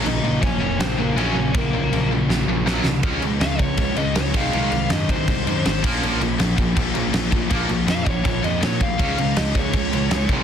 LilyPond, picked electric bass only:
\new Staff \with { instrumentName = "Picked electric bass" } { \clef bass \time 4/4 \key des \major \tempo 4 = 161 bes,,8 bes,,8 bes,,8 f,,8 bes,,8 bes,,8 bes,,8 bes,,8 | bes,,8 bes,,8 bes,,4 bes,,8 bes,,8 bes,,8 c,8 | des,8 des,8 des,8 des,8 des,8 des,8 des,8 c,8 | c,8 c,8 ges,8 c,8 c,8 ges,8 aes,,8 bes,,8 |
bes,,8 bes,,8 bes,,8 bes,,8 bes,,8 bes,,8 bes,,8 bes,,8 | bes,,8 bes,,8 f,8 bes,,8 bes,,8 f,8 bes,8 bes,,8 | des,8 des,8 des,8 des,8 des,8 des,8 des,8 c,8 | }